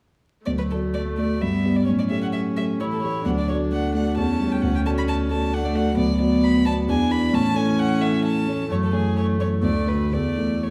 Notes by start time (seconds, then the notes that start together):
0.46 D2 F#3 A3 D5
0.58 B4
0.71 A3 F#4 A4 D5
0.94 A3 D5
1.18 A3 F#4 D5
1.41 G2 G3 B3 E5
1.65 B3 G4 D5
1.76 D5
1.86 A2 F#3 C#4 C#5
1.99 D5
2.10 A3 G4 C#5 E5
2.22 F#5
2.33 E5
2.57 A3 G4 C#5 E5
2.80 E3 E4 C#5
2.92 A4
3.03 A3 G4 C#5
3.25 D2 F#3 D4 F#5
3.38 D5
3.49 A3 F#4 C#5 D5
3.71 A3 F#5
3.95 A3 F#4 D5 F#5
4.17 E2 C#4 A5
4.40 G3 G4 C#5
4.52 G5
4.62 D2 F#5
4.75 G5
4.86 A3 F#4 D5 A5
4.98 B5
5.08 A5
5.30 A3 F#4 D5 A5
5.53 A3 D4 F#5
5.65 D5
5.75 A3 F#4 D5 F#5
5.97 D2 F#3 B3 D5
6.20 B3 F#4 D5
6.44 B5
6.66 B3 F#4 D5 A5
6.88 E2 E3 D4 G#5
7.10 B3 E4 D5 B5
7.33 A2 C#4 A5
7.55 A3 E4 C#5 G#5
7.79 F#5
8.00 A3 E4 C#5 E5
8.25 A5
8.47 A3 E4 C#5
8.69 F#2 E3 A3 C#5
8.84 A4
8.92 A3 E4 G#4 C#5
9.15 E3 A3 C#5
9.39 A3 E4 C#5
9.62 D2 D3 A3 D5
9.86 A3 F#4 B4
10.12 E2 E3 A3 D5
10.38 A3 E4 A4
10.63 E3 A3 C#5